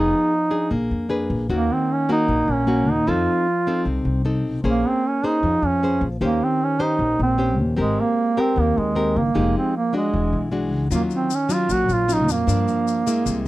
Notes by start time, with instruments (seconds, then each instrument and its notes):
Already playing: upright bass F1, nylon-string guitar F3 B3 D#4 G#4, duduk D#4
0.51 nylon-string guitar D4 G#4
0.71 upright bass A#1, nylon-string guitar A#3
0.91 upright bass F2
1.09 nylon-string guitar D4 G#4 B4
1.30 upright bass A#1
1.49 upright bass D#2, nylon-string guitar D#3 A#3 C#4 F#4
1.54 duduk A#3
1.73 duduk C4
1.93 duduk C#4
2.09 nylon-string guitar A#3 C#4 F#4, duduk D#4
2.28 upright bass A#1, nylon-string guitar A#2
2.48 upright bass A#1
2.52 duduk C#4
2.67 nylon-string guitar A#3 C#4 F#4
2.88 upright bass D#2, duduk D#4
3.07 upright bass F2, nylon-string guitar F3 C4 D#4 A4, duduk F4
3.67 nylon-string guitar C4 D#4 A4
3.85 upright bass C2, nylon-string guitar C3
4.05 upright bass C2
4.25 nylon-string guitar C4 D#4 A4
4.44 upright bass B1
4.64 upright bass A#1, nylon-string guitar A#3 C#4 G#4 C5
4.68 duduk A#3
4.88 duduk C4
5.07 duduk C#4
5.24 nylon-string guitar C#4 G#4 C5, duduk D#4
5.43 upright bass F2, nylon-string guitar F3
5.62 upright bass F2
5.66 duduk C#4
5.83 nylon-string guitar C#4 G#4 C5
6.01 upright bass A#1
6.21 upright bass D#2, nylon-string guitar D#3 C#4 G4 C5, duduk A#3
6.44 duduk C4
6.63 duduk C#4
6.79 nylon-string guitar C#4 G4 C5, duduk D#4
6.99 upright bass A#1, nylon-string guitar A#2
7.19 upright bass A#1, duduk C4
7.38 nylon-string guitar C#4 G4 C5
7.59 upright bass D#2
7.77 upright bass G#1, nylon-string guitar G#3 C4 G4 A#4, duduk G#3
8.01 duduk A#3
8.37 nylon-string guitar C4 G4 A#4, duduk C4
8.56 upright bass D#2, nylon-string guitar D#3
8.61 duduk A#3
8.77 upright bass D#2, duduk G#3
8.95 nylon-string guitar C4 G4 A#4
9.16 upright bass G1, duduk A#3
9.35 upright bass F1, nylon-string guitar F3 G#3 D#4 G4
9.58 duduk C4
9.77 duduk A#3
9.93 nylon-string guitar G#3 D4 F#4, duduk G#3
10.13 upright bass E1, nylon-string guitar E3
10.33 upright bass B1
10.52 nylon-string guitar G#3 D4 F#4
10.71 upright bass C#2
10.91 upright bass D#2, nylon-string guitar D#3 F#3 C#4 F4, duduk A#3, shaker
11.11 duduk C4, shaker
11.30 duduk C#4, shaker
11.49 nylon-string guitar F#3 C#4 F4, shaker
11.54 duduk F4
11.69 upright bass A#1, nylon-string guitar A#2, duduk F#4, shaker
11.88 upright bass A#1, shaker
11.93 duduk F4
12.08 nylon-string guitar F#3 C#4 F4, shaker
12.13 duduk D#4
12.28 upright bass F2, duduk A#3, shaker
12.47 nylon-string guitar G2 F3 A#3 D4, upright bass G2, shaker
12.68 shaker
12.88 shaker
13.07 nylon-string guitar G#3 A#3 E4, shaker
13.26 upright bass C2, nylon-string guitar C3, shaker